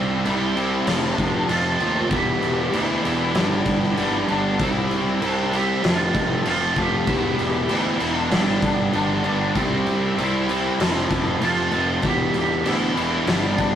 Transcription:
Already playing: picked electric bass C2, distorted electric guitar C3 G3 C4 E4, tonewheel organ G4 E5 C6
0.25 picked electric bass C2, distorted electric guitar C3 G3 C4 E4, crash
0.56 distorted electric guitar C3 G3 C4 E4, crash
0.87 picked electric bass F1, overdriven electric guitar F2 C3, distorted electric guitar F3 A3 C4 F4, tonewheel organ A4 A5, snare, crash
1.13 lead electric guitar D4
1.18 picked electric bass F1, kick, crash
1.48 picked electric bass F1, overdriven electric guitar F2 C3, distorted electric guitar F3 A3 C4 F4, crash
1.79 picked electric bass D#2, overdriven electric guitar F2 C3, distorted electric guitar F3 A3 C4 F4, crash
2.11 picked electric bass E1, overdriven electric guitar E2 B2, distorted electric guitar E3 G3 B3 E4, tonewheel organ G4 E5 B5, kick, crash
2.15 lead electric guitar G4
2.42 picked electric bass E1, crash
2.72 picked electric bass D2, overdriven electric guitar E2 B2, distorted electric guitar E3 G3 B3 E4, crash
3.03 picked electric bass E1, overdriven electric guitar E2 B2, distorted electric guitar E3 G3 B3 E4, crash
3.35 picked electric bass G1, distorted electric guitar G2 D3 G3 B3 D4, lead electric guitar E4, tonewheel organ D5, snare, crash
3.65 picked electric bass G1, kick, crash
3.83 snare
3.97 picked electric bass G1, distorted electric guitar G2 D3 G3 B3 D4, crash
4.28 picked electric bass G1, distorted electric guitar G2 D3 G3 B3 D4, crash
4.59 picked electric bass C2, distorted electric guitar C3 G3 C4 E4, tonewheel organ G4 E5 C6, kick, crash
4.91 picked electric bass C2, crash
5.21 picked electric bass C2, distorted electric guitar C3 G3 C4 E4, crash
5.29 lead electric guitar D4
5.53 distorted electric guitar C3 G3 C4 E4, lead electric guitar G4, crash
5.83 picked electric bass F1, overdriven electric guitar F2 C3, distorted electric guitar F3 A3 C4 F4, tonewheel organ A4 F5, snare, crash
6.15 picked electric bass F1, kick, crash
6.45 picked electric bass F1, overdriven electric guitar F2 C3, distorted electric guitar F3 A3 C4 F4, crash
6.76 picked electric bass F1, overdriven electric guitar F2 C3, distorted electric guitar F3 A3 C4 F4, lead electric guitar G4, kick, crash
7.07 picked electric bass E1, overdriven electric guitar E2 B2, distorted electric guitar E3 G3 B3 E4, tonewheel organ G4 E5 B5, kick, crash
7.39 picked electric bass E1, crash
7.69 picked electric bass D2, overdriven electric guitar E2 B2, distorted electric guitar E3 G3 B3 E4, crash
8.00 picked electric bass E1, overdriven electric guitar E2 B2, distorted electric guitar E3 G3 B3 E4, crash
8.16 lead electric guitar D4
8.31 picked electric bass G1, distorted electric guitar G2 D3 G3 B3 D4, tonewheel organ D5, snare, crash
8.35 lead electric guitar E4
8.62 picked electric bass G1, lead electric guitar D4, kick, crash
8.93 picked electric bass G1, distorted electric guitar G2 D3 G3 B3 D4, crash
9.22 picked electric bass G1, distorted electric guitar G2 D3 G3 B3 D4, crash
9.54 picked electric bass C2, distorted electric guitar C3 G3 C4 E4, tonewheel organ G4 E5 C6, kick, crash
9.86 picked electric bass C2, crash
10.18 picked electric bass C2, distorted electric guitar C3 G3 C4 E4, crash
10.48 distorted electric guitar C3 G3 C4 E4, crash
10.79 picked electric bass F1, overdriven electric guitar F2 C3, distorted electric guitar F3 A3 C4 F4, tonewheel organ A4 A5, snare, crash
11.10 picked electric bass F1, kick, crash
11.40 picked electric bass F1, overdriven electric guitar F2 C3, distorted electric guitar F3 A3 C4 F4, crash
11.71 picked electric bass F1, overdriven electric guitar F2 C3, distorted electric guitar F3 A3 C4 F4, crash
12.02 picked electric bass E1, overdriven electric guitar E2 B2, distorted electric guitar E3 G3 B3 E4, tonewheel organ G4 E5 B5, lead electric guitar G4, kick, crash
12.34 picked electric bass E1, crash
12.38 lead electric guitar G4
12.64 picked electric bass D2, overdriven electric guitar E2 B2, distorted electric guitar E3 G3 B3 E4, crash
12.95 picked electric bass E1, overdriven electric guitar E2 B2, distorted electric guitar E3 G3 B3 E4, crash
13.26 picked electric bass G1, distorted electric guitar G2 D3 G3 B3 D4, lead electric guitar E4, tonewheel organ D5 B5, snare, crash
13.50 lead electric guitar B3
13.58 picked electric bass G1, lead electric guitar D4, kick, crash

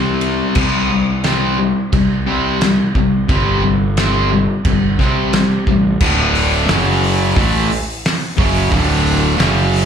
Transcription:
Already playing: fingered electric bass C2, distorted electric guitar C3 G3 C4
0.21 ride
0.55 fingered electric bass C2, distorted electric guitar C3 G3 C4, kick, crash
0.90 distorted electric guitar C3 G3
1.24 distorted electric guitar C3 G3 C4, snare, crash
1.58 distorted electric guitar C3 G3
1.93 fingered electric bass C2, distorted electric guitar C3 G3, kick, crash
2.26 distorted electric guitar C3 G3 C4
2.61 distorted electric guitar C3 G3, snare, crash
2.95 fingered electric bass C2, distorted electric guitar C3 G3, kick
3.28 fingered electric bass G1, distorted electric guitar C3 G3 C4, kick, crash
3.62 distorted electric guitar C3 G3
3.97 distorted electric guitar C3 G3 C4, snare, crash
4.31 distorted electric guitar C3 G3
4.65 fingered electric bass G1, distorted electric guitar C3 G3, kick, crash
4.99 fingered electric bass C3, distorted electric guitar C3 G3 C4, kick, snare
5.33 distorted electric guitar C3 G3, snare, crash
5.67 fingered electric bass A1, distorted electric guitar C3 G3, kick
6.00 fingered electric bass D1, distorted electric guitar D2 A2 D3, kick, crash
6.35 open hi-hat
6.68 fingered electric bass F#1, distorted electric guitar F#2 C#3 F#3, snare, open hi-hat
7.03 open hi-hat
7.36 fingered electric bass A1, distorted electric guitar A2 E3 A3, kick, open hi-hat
7.71 open hi-hat
8.05 snare, open hi-hat
8.37 fingered electric bass F#1, distorted electric guitar F#2 C#3 F#3, kick, open hi-hat
8.71 fingered electric bass D1, distorted electric guitar D2 A2 D3, kick, open hi-hat
9.06 open hi-hat
9.38 fingered electric bass F#1, distorted electric guitar F#2 C#3 F#3, snare, open hi-hat
9.73 open hi-hat

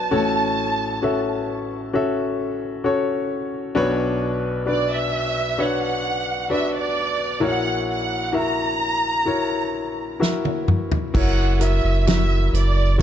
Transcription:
Already playing: grand piano F#3 D4 F#4 B4 C5 C#5, violin section A5
0.11 grand piano A1 A2 C#4 F#4 A4 C#5
1.02 grand piano C#4 F#4 A4 E5
1.93 grand piano C#4 F#4 A4 E5
2.84 grand piano C#4 F#4 A4 C#5
3.75 grand piano B1 B2 D4 F#4 B4 C#5
4.66 grand piano D4 F#4 B4 D5, violin section D5
4.92 violin section E5
5.58 grand piano D4 F#4 B4 C#5, violin section F#5
5.84 violin section F#5
6.50 grand piano D4 F#4 B4 D5, violin section E5
6.75 violin section D5
7.40 grand piano A#1 A#2 E4 F#4 A#4 C#5
7.45 violin section F#5
7.91 violin section F#5
8.33 grand piano E4 F#4 A#4 E5
8.37 violin section A#5
9.26 grand piano E4 F#4 A#4 C#5
10.20 grand piano E4 F#4 A#4 E5, snare
10.45 high tom
10.68 mid tom
10.91 floor tom
11.14 sub bass F#1, grand piano E4 F#4 A#4 C#5, violin section F#5, kick, crash
11.60 grand piano E4 F#4 A#4 E5, violin section E5, closed hi-hat
11.84 sub bass F#1
12.07 grand piano E4 F#4 A#4 E5, violin section E5, snare, closed hi-hat
12.53 sub bass F#1, violin section D5, closed hi-hat
12.98 grand piano E4 F#4

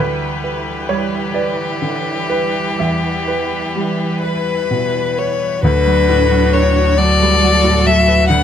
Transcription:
Already playing: grand piano D2 B4, cello E3, violin G4, string section B4
0.00 string section G3 E4
0.44 grand piano B4
0.89 grand piano G3 C#5
1.34 grand piano B4 D5
1.82 grand piano D3
2.30 grand piano B4
2.79 grand piano E2 E5, string section B4
3.28 grand piano B4
3.75 grand piano G3
4.22 violin B4, grand piano B4
4.71 grand piano B2
5.18 grand piano B4, violin C#5
5.62 sub bass D2, grand piano D2, string section F#3 F#4 A4, cello D4, viola F#4, violin B4
5.87 grand piano F#3
6.09 grand piano A2
6.30 grand piano F#3
6.53 grand piano B4, violin C#5
6.75 grand piano F#4
6.96 grand piano F#3, cello F#4, viola A4, violin D5
7.20 grand piano G3
7.42 grand piano F#3
7.64 grand piano A2
7.86 grand piano F#3, violin E5
8.08 grand piano B4
8.28 grand piano D2, cello D4, string section B4, viola B4, violin F#5

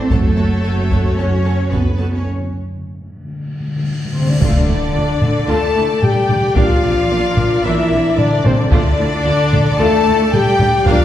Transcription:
Already playing: string section A3 E4 A4, violin section C5
0.00 cello section C4
0.09 double bass section F#1, cello section A3, string section F#4 C#5, french horn section F#4 A4, viola section F#4 A4, violin section A4 C#5 A5, taiko
0.36 viola section F#4 A4, violin section C#5 A5
0.64 double bass section F#1, viola section F#4 A4, violin section C#5 A5
0.90 viola section F#4 A4, violin section C#5 A5, taiko
1.18 double bass section F#1, cello section C#4, viola section F#4 A4, violin section C#5 A5
1.44 viola section F#4 A4, violin section C#5 A5
1.71 double bass section F#1, cello section B3, viola section F#4 A4, violin section B4 C#5 A5, taiko
1.98 viola section F#4 A4, violin section C#5 A5
2.14 cello section C#4, violin section C#5
2.26 timpani D3, cymbal swell
2.34 timpani D3
2.41 timpani D3
2.56 timpani D3
2.71 timpani D3
2.78 timpani D3
2.86 timpani D3
2.94 timpani D3
3.01 timpani D3
3.09 timpani D3
3.16 timpani D3
3.25 timpani D3
3.32 timpani D3
3.40 timpani D3
3.46 timpani D3
3.54 timpani D3
3.60 timpani D3
3.68 timpani D3
3.76 timpani D3
3.83 timpani D3
3.90 timpani D3
3.98 timpani D3
4.05 timpani D3
4.13 cello section C3, timpani D3, french horn section C4, violin section C5, trumpet section C5, flute C5
4.19 timpani D3
4.27 timpani D3, cello section D3, french horn section D4, violin section D5, trumpet section D5, flute D5
4.40 double bass section D2, cello section D3, timpani D3, viola section A3 F4, french horn section D4, string section D4 A4 D5, trumpet section D5, violin section D5, flute D5, taiko, impact
4.67 double bass section D2, viola section A3 E4
4.94 double bass section D2, viola section A3 F4
5.21 double bass section D2, viola section A3 D4, taiko low-mid
5.48 double bass section D2, viola section A3 F4, cello section A3, french horn section A4, violin section A5, trumpet section A5, flute A5
5.75 double bass section D2, viola section A3 E4
6.01 cello section G3, french horn section G4, violin section G5, flute G5, trumpet section G5, taiko low-mid
6.29 double bass section D2, viola section A3 D4, taiko low-mid
6.55 double bass section A#1, cello section F3, viola section A#3 D4, french horn section F4, string section A#4, violin section F5, trumpet section F5, flute F5, taiko
6.82 double bass section A#1, viola section A#3 C4
7.10 double bass section A#1, viola section A#3 D4
7.37 double bass section A#1, viola section A#3, taiko low-mid
7.62 double bass section A#1, cello section E3, viola section A#3 D4, french horn section E4, trumpet section E5, violin section E5, flute E5
7.91 double bass section A#1, viola section A#3 C4
8.16 cello section D3, french horn section D4, violin section D5, trumpet section D5, flute D5, taiko low-mid
8.43 double bass section A#1, cello section C3, viola section A#3, french horn section C4, violin section C5, trumpet section C5, flute C5, taiko low-mid
8.56 cello section D3, french horn section D4, violin section D5, trumpet section D5
8.60 flute D5
8.70 double bass section D2, cello section D3, viola section A3 F4, french horn section D4, string section A4, violin section D5, trumpet section D5, flute D5, taiko
8.98 double bass section D2, viola section A3 E4
9.25 double bass section D2, viola section A3 F4
9.52 double bass section D2, viola section A3 D4, taiko low-mid
9.77 double bass section D2, viola section A3 F4, cello section A3, french horn section A4, violin section A5, trumpet section A5, flute A5
10.06 double bass section D2, viola section A3 E4
10.32 cello section G3, french horn section G4, flute G5, violin section G5, trumpet section G5, taiko low-mid
10.59 double bass section D2, viola section A3 D4, taiko low-mid
10.85 double bass section A#1, cello section F3, viola section A#3 D4, string section D4 A#4 D5, french horn section F4, flute F5, violin section F5, trumpet section F5, taiko

